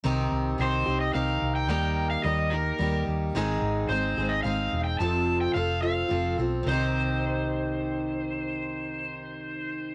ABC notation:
X:1
M:3/4
L:1/16
Q:1/4=108
K:Cm
V:1 name="Electric slide guitar"
z4 c3 e f3 g | g3 f e2 B4 z2 | z4 c3 e f3 g | =a3 g f2 f4 z2 |
c12- | c12 |]
V:2 name="Steel-string acoustic guitar"
[C,E,CEG]4 [E,CEG]2 [CEG]2 [E,CEG]4 | [E,G,B,EG]4 [G,B,EG]2 [B,EG]2 [G,B,EG]4 | [A,,E,A,CEA]4 [A,CEA]2 [A,CEA]2 [A,CEA]4 | [F,,C,F,CF=A]4 [F,CFA]2 [F,CFA]2 [F,CFA]2 [F,CFA]2 |
[C,E,CEG]12- | [C,E,CEG]12 |]
V:3 name="Fingered electric bass" clef=bass
C,,2 C,,2 C,,2 C,,2 C,,2 C,,2 | E,,4 E,,4 E,,2 E,,2 | A,,,2 A,,,2 A,,,2 A,,,2 A,,,2 =E,,,2 | F,,,4 F,,,4 F,,,2 =B,,,2 |
C,,12- | C,,12 |]